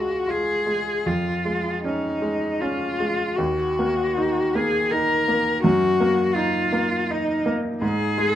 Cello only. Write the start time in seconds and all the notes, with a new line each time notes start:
Already playing: F#4
0.30 G#4
1.07 F4
1.85 D#4
2.61 F4
3.36 F#4
4.56 G#4
4.90 A#4
5.63 F#4
6.34 F4
7.10 D#4
7.83 G#4